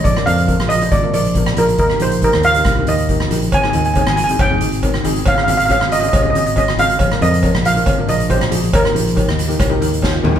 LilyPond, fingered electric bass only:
\new Staff \with { instrumentName = "Fingered electric bass" } { \clef bass \time 4/4 \key bes \dorian \tempo 4 = 138 bes,,16 r16 f,8. bes,,8. aes,,8 bes,,4 bes,,8 | ees,16 r16 bes,,8. ees,8. c,8 ees,4 bes,,8 | aes,,16 r16 ees,8. aes,,8. f,,8 aes,,4 aes,,8 | aes,,16 r16 aes,,8. aes,,8. c,8 aes,,4 aes,,8 |
bes,,16 r16 f,8. bes,,8. aes,,8 bes,,4 bes,,8 | ees,16 r16 bes,,8. ees,8. c,8 ees,4 ees,8 | }